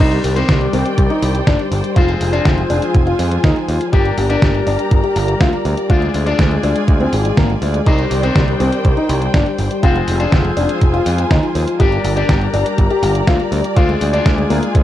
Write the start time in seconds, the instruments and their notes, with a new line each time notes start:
0.00 picked electric bass C2, string section D#3 C5 D5 G5, clean electric guitar G3 D4 D#4 C5, grand piano D#4
0.12 grand piano G3, closed hi-hat
0.24 picked electric bass C2, grand piano G3, open hi-hat
0.36 clean electric guitar G3 D4 D#4 C5, grand piano C4, closed hi-hat
0.49 picked electric bass C2, grand piano G3, kick, snare, closed hi-hat
0.61 grand piano G3, closed hi-hat
0.73 picked electric bass C2, grand piano C4, open hi-hat
0.85 grand piano G3, closed hi-hat
0.98 picked electric bass C2, grand piano G3, kick, closed hi-hat
1.10 grand piano D#4, closed hi-hat
1.22 picked electric bass C2, grand piano G3, open hi-hat
1.35 grand piano G3, closed hi-hat
1.47 picked electric bass G1, grand piano D4, kick, snare, closed hi-hat
1.59 grand piano G3, closed hi-hat
1.72 picked electric bass G1, grand piano G3, open hi-hat
1.84 grand piano G3, closed hi-hat
1.96 picked electric bass F1, clean electric guitar G#3 C4 F4 C5, grand piano F4, string section F4 G#4 G#5, kick, closed hi-hat
2.08 grand piano F3, closed hi-hat
2.21 picked electric bass F1, grand piano F3, open hi-hat
2.33 clean electric guitar G#3 C4 F4 C5, grand piano D4, closed hi-hat
2.45 picked electric bass F1, grand piano F3, kick, snare, closed hi-hat
2.58 grand piano F3, closed hi-hat
2.70 picked electric bass F1, grand piano D4, open hi-hat
2.82 grand piano F3, closed hi-hat
2.94 picked electric bass F1, grand piano F3, kick, closed hi-hat
3.07 grand piano F4, closed hi-hat
3.19 picked electric bass F2, grand piano F3, open hi-hat
3.31 grand piano F3, closed hi-hat
3.44 picked electric bass D#2, grand piano D#4, kick, snare, closed hi-hat
3.56 grand piano F3, closed hi-hat
3.68 picked electric bass D#2, grand piano F3, open hi-hat
3.81 grand piano F3, closed hi-hat
3.92 picked electric bass G1, clean electric guitar A#3 D4 G4 D5, grand piano G4, string section G4 A#4 D5 A#5, kick, closed hi-hat
4.05 grand piano G3, closed hi-hat
4.18 picked electric bass G1, grand piano G3, open hi-hat
4.30 clean electric guitar A#3 D4 G4 D5, grand piano D4, closed hi-hat
4.42 picked electric bass G1, grand piano G3, kick, snare, closed hi-hat
4.54 grand piano G3, closed hi-hat
4.67 picked electric bass G1, grand piano D4, open hi-hat
4.79 grand piano G3, closed hi-hat
4.91 picked electric bass G1, grand piano G3, kick, closed hi-hat
5.04 grand piano G4, closed hi-hat
5.16 picked electric bass G1, grand piano G3, open hi-hat
5.28 grand piano G3, closed hi-hat
5.40 picked electric bass D2, grand piano F4, kick, snare, closed hi-hat
5.53 grand piano G3, closed hi-hat
5.65 picked electric bass D2, grand piano G3, open hi-hat
5.77 grand piano G3, closed hi-hat
5.89 picked electric bass D2, clean electric guitar G#3 D4 F4 D5, grand piano F4, string section F4 G#4 G#5, kick, closed hi-hat
6.02 grand piano G#3, closed hi-hat
6.14 picked electric bass D2, grand piano G#3, open hi-hat
6.26 clean electric guitar G#3 D4 F4 D5, grand piano D4, closed hi-hat
6.39 picked electric bass D2, grand piano G#3, kick, snare, closed hi-hat
6.51 grand piano G#3, closed hi-hat
6.63 picked electric bass D2, grand piano D4, open hi-hat
6.76 grand piano G#3, closed hi-hat
6.88 picked electric bass D2, kick, closed hi-hat
7.00 grand piano C4, closed hi-hat
7.13 picked electric bass G#1, grand piano G#3, open hi-hat
7.25 grand piano G#3, closed hi-hat
7.37 picked electric bass G#1, grand piano A#3, kick, snare, closed hi-hat
7.50 grand piano G#3, closed hi-hat
7.62 picked electric bass D2, grand piano G#3, open hi-hat
7.74 grand piano G#3, closed hi-hat
7.86 picked electric bass C2, string section D#3 C5 G5, clean electric guitar G3 D4 D#4 C5, grand piano D#4, kick, closed hi-hat
7.99 grand piano G3, closed hi-hat
8.11 picked electric bass C2, grand piano G3, open hi-hat
8.23 clean electric guitar G3 D4 D#4 C5, grand piano C4, closed hi-hat
8.35 picked electric bass C2, grand piano G3, kick, snare, closed hi-hat
8.48 grand piano G3, closed hi-hat
8.60 picked electric bass C2, grand piano C4, open hi-hat
8.72 grand piano G3, closed hi-hat
8.85 picked electric bass C2, grand piano G3, kick, closed hi-hat
8.97 grand piano D#4, closed hi-hat
9.09 picked electric bass C2, grand piano G3, open hi-hat
9.22 grand piano G3, closed hi-hat
9.34 picked electric bass G1, grand piano D4, kick, snare, closed hi-hat
9.46 grand piano G3, closed hi-hat
9.58 picked electric bass G1, grand piano G3, open hi-hat
9.71 grand piano G3, closed hi-hat
9.83 picked electric bass F1, clean electric guitar G#3 C4 F4 C5, string section F4 G#4 C5 G#5, grand piano F4, kick, closed hi-hat
9.95 grand piano F3, closed hi-hat
10.08 picked electric bass F1, grand piano F3, open hi-hat
10.20 clean electric guitar G#3 C4 F4 C5, grand piano D4, closed hi-hat
10.32 picked electric bass F1, grand piano F3, kick, snare, closed hi-hat
10.45 grand piano F3, closed hi-hat
10.57 picked electric bass F1, grand piano D4, open hi-hat
10.69 grand piano F3, closed hi-hat
10.81 picked electric bass F1, grand piano F3, kick, closed hi-hat
10.94 grand piano F4, closed hi-hat
11.06 picked electric bass F2, grand piano F3, open hi-hat
11.18 grand piano F3, closed hi-hat
11.30 picked electric bass D#2, grand piano D#4, kick, snare, closed hi-hat
11.43 grand piano F3, closed hi-hat
11.55 picked electric bass D#2, grand piano F3, open hi-hat
11.67 grand piano F3, closed hi-hat
11.79 picked electric bass G1, clean electric guitar A#3 D4 G4 D5, grand piano G4, string section G4 A#4 D5 A#5, kick, closed hi-hat
11.92 grand piano G3, closed hi-hat
12.04 picked electric bass G1, grand piano G3, open hi-hat
12.16 clean electric guitar A#3 D4 G4 D5, grand piano D4, closed hi-hat
12.29 picked electric bass G1, grand piano G3, kick, snare, closed hi-hat
12.41 grand piano G3, closed hi-hat
12.54 picked electric bass G1, grand piano D4, open hi-hat
12.66 grand piano G3, closed hi-hat
12.78 picked electric bass G1, grand piano G3, kick, closed hi-hat
12.90 grand piano G4, closed hi-hat
13.03 picked electric bass G1, grand piano G3, open hi-hat
13.15 grand piano G3, closed hi-hat
13.27 picked electric bass D2, grand piano F4, kick, snare, closed hi-hat
13.40 grand piano G3, closed hi-hat
13.52 picked electric bass D2, grand piano G3, open hi-hat
13.64 grand piano G3, closed hi-hat
13.76 picked electric bass D2, clean electric guitar G#3 D4 F4 D5, grand piano F4, string section F4 G#4 G#5, kick, closed hi-hat
13.89 grand piano G#3, closed hi-hat
14.01 picked electric bass D2, grand piano G#3, open hi-hat
14.13 clean electric guitar G#3 D4 F4 D5, grand piano D4, closed hi-hat
14.26 picked electric bass D2, grand piano G#3, kick, snare, closed hi-hat
14.38 grand piano G#3, closed hi-hat
14.50 picked electric bass D2, grand piano A#3, open hi-hat
14.62 grand piano G#3, closed hi-hat
14.75 picked electric bass D2, grand piano G#3, kick, closed hi-hat